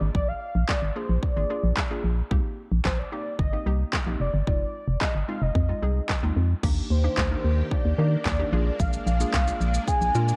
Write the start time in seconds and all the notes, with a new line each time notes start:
Already playing: A#3 D4 F4 G#4 D5
0.01 G#1
0.15 A#1 D5, kick
0.28 F5
0.55 A#1
0.69 D5, kick, snare, clap
0.82 G#1
0.96 A#3 D4 F4 G#4 C5
1.09 A#1
1.23 D5, kick
1.36 G#1 A#3 D4 F4 G#4
1.50 A#3 D4 F4 G#4
1.64 A#1
1.77 kick, snare, clap
1.90 A#3 D4 F4 G#4
2.04 A#1
2.31 C2 A#3 C4 D#4 G4, kick
2.72 A#1
2.85 A#1 C5, kick, snare, clap
2.99 D5
3.12 A#3 C4 D#4 G4
3.39 G1 D#5, kick
3.53 A#3 C4 D#4 G4
3.66 C2 A#3 C4 D#4 G4
3.93 kick, snare, clap
4.07 A#1 A#3 C4 D#4 G4
4.20 F1 D5
4.34 G1
4.47 F1 G#3 C4 D#4 F4 D5, kick
4.88 F1
5.01 D#5, kick, snare, clap
5.15 G1
5.28 G#3 C4 D#4 F4 F5
5.42 F1 D#5
5.55 F2, kick
5.69 G#3 C4 D#4 F4
5.82 C2 G#3 C4 D#4 G#4
6.09 D#2, kick, snare, clap
6.23 D#2 G#3 C4 D#4 F4
6.37 F2
6.63 D#2 D#3 A#3 D4 D#4 G4, kick, crash
6.90 D#2 C5
7.04 A#3 D4 D#4 G4
7.17 D2, kick, snare, clap
7.31 A#3 D4 D#4 A#4
7.44 D#2
7.71 A#3 D4 D#4 G4 D5, kick
7.85 D#2
7.98 D#3 A#3 D4 D#4 G4
8.25 D#2, kick, snare, clap
8.39 A#3 D4 D#4 G4
8.52 A#1 G#3 A#3 D4 F4 G#4
8.80 A#1 F5, kick, shaker
8.93 shaker
9.07 A#1 F5, shaker
9.20 A#3 D4 F4 G#4, shaker
9.34 C2, kick, snare, clap, shaker
9.47 A#3 D4 F4 G#4, shaker
9.61 A#1, shaker
9.74 shaker
9.88 A#3 D4 F4 G#4 G#5, kick, shaker
10.01 A#1, shaker
10.15 A#2 A#3 D4 F4 A#4, shaker
10.28 shaker